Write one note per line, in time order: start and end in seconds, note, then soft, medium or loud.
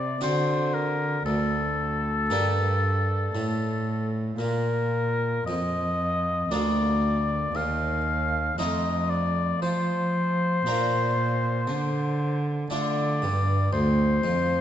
0.00 0.18 C3 soft
0.00 0.21 C3 soft
0.00 0.20 D5 medium
0.21 1.22 D3 soft
0.21 1.24 D3 medium
0.21 2.26 C4 soft
0.21 2.26 D4 soft
0.21 2.26 F#4 soft
0.21 0.75 C5 medium
0.74 1.25 A#4 medium
1.25 2.26 D2 soft
1.25 2.33 D2 soft
1.25 4.08 A4 medium
2.30 3.32 G2 soft
2.30 3.35 G2 medium
2.30 4.36 A#3 soft
2.30 4.37 D4 soft
2.30 4.37 G4 soft
3.35 4.36 A2 soft
3.35 4.38 A2 medium
4.38 5.43 A#2 soft
4.38 5.46 A#2 medium
4.38 5.43 A#4 medium
5.46 6.48 F2 soft
5.46 6.50 F2 medium
5.46 6.53 D#5 medium
6.51 7.52 D2 soft
6.51 7.54 D2 medium
6.51 8.01 A#3 soft
6.51 8.01 D4 soft
6.51 8.01 F4 soft
6.51 7.57 D5 medium
7.55 8.55 D#2 soft
7.55 8.57 D#2 medium
7.55 8.58 F5 medium
8.58 9.59 F2 soft
8.58 9.61 F2 medium
8.58 10.61 A3 soft
8.58 10.62 D#4 soft
8.58 10.62 F4 soft
8.58 9.11 D#5 medium
9.10 9.62 D5 medium
9.62 10.64 F3 medium
9.62 10.62 F3 soft
9.62 12.39 C5 medium
10.66 11.64 A#2 soft
10.66 11.71 A#2 medium
10.66 12.67 A#3 soft
10.66 12.67 D4 soft
10.66 12.68 F4 soft
11.67 12.66 D3 soft
11.67 12.71 D3 medium
12.70 13.18 D3 soft
12.70 13.25 D3 medium
12.70 13.18 A3 soft
12.70 14.61 D4 soft
12.70 14.61 F4 soft
12.70 13.69 D5 medium
13.22 13.69 G2 soft
13.22 13.74 G2 medium
13.73 14.20 D2 soft
13.73 14.24 D2 medium
13.73 14.61 C5 medium
14.24 14.61 F2 medium